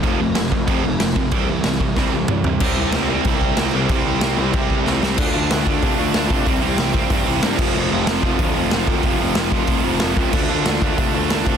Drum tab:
CC |x-x-x-x-|x-x-----|x-x-x-x-|x-x-x---|
HH |--------|--------|--------|--------|
SD |--o---o-|--o-o---|--o---o-|--o---oo|
T2 |--------|------o-|--------|--------|
FT |--------|-------o|--------|--------|
BD |o--oo--o|o--oo---|o---oo--|o---oo--|

CC |x-------|-------x|--------|--------|
HH |--o-o-o-|o-o-o-o-|--o-o-o-|o-o-o-o-|
SD |--o---o-|--o---o-|--o---o-|--o---o-|
T2 |--------|--------|--------|--------|
FT |--------|--------|--------|--------|
BD |o--oo--o|o--oo--o|---oo--o|o--oo--o|

CC |x-------|
HH |--o-o-o-|
SD |--o---o-|
T2 |--------|
FT |--------|
BD |o--oo--o|